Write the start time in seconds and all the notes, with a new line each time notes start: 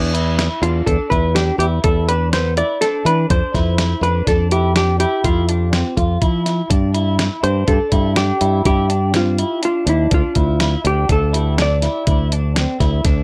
Already playing: E2
0.14 E4, closed hi-hat
0.38 E4, snare, closed hi-hat
0.62 E2 D4 F4, closed hi-hat
0.86 E2 D4 A4, kick, closed hi-hat
1.10 E2 E4 B4, kick, closed hi-hat
1.35 D4 G4, snare, closed hi-hat
1.58 E2 E4 G4, closed hi-hat
1.84 E2 E4 A4, kick, closed hi-hat
2.08 D4 B4, closed hi-hat
2.33 B3 C5, snare, closed hi-hat
2.57 E4 D5, closed hi-hat
2.81 D4 A4, snare, closed hi-hat
3.05 E3 D4 B4, closed hi-hat
3.30 F2 D4 C5, kick, closed hi-hat
3.54 F2 E4, kick, snare, closed hi-hat
3.78 E4, snare, closed hi-hat
4.01 F2 D4 B4, closed hi-hat
4.27 F2 D4 A4, kick, snare, closed hi-hat
4.51 E4 G4, closed hi-hat
4.76 D4 G4, snare, closed hi-hat
5.00 E4 G4, closed hi-hat
5.24 F2 E4 F4, kick, closed hi-hat
5.49 D4, closed hi-hat
5.73 C4, snare, closed hi-hat
5.97 F2 F4, kick, closed hi-hat
6.21 F3 E4, kick, closed hi-hat
6.46 E4, snare, closed hi-hat
6.70 G2 D4, kick, closed hi-hat
6.94 E4, closed hi-hat
7.19 E4, snare, closed hi-hat
7.43 G2 D4 C5, closed hi-hat
7.67 G2 D4 A4, kick, closed hi-hat
7.92 G2 E4, kick, closed hi-hat
8.16 D4 G4, snare, closed hi-hat
8.41 G2 E4, closed hi-hat
8.65 G2 E4 G4, kick, closed hi-hat
8.90 D4, closed hi-hat
9.14 C4 F4, snare, closed hi-hat
9.38 E4, closed hi-hat
9.62 D4 F4, closed hi-hat
9.86 D#2 D4 E4, closed hi-hat
10.11 D2 D4 F4, kick, closed hi-hat
10.35 D2 E4, kick, closed hi-hat
10.60 E4, snare, closed hi-hat
10.84 D2 D4 G4, closed hi-hat
11.09 D2 D4 A4, kick, closed hi-hat
11.33 E4, closed hi-hat
11.58 D4, snare, closed hi-hat
11.62 D5
11.82 E4, snare, closed hi-hat
12.07 D2 E4, kick, closed hi-hat
12.32 D4, closed hi-hat
12.56 C4, snare, closed hi-hat
12.80 D2 E4, kick, snare, closed hi-hat
13.04 D2 D4, kick, snare, closed hi-hat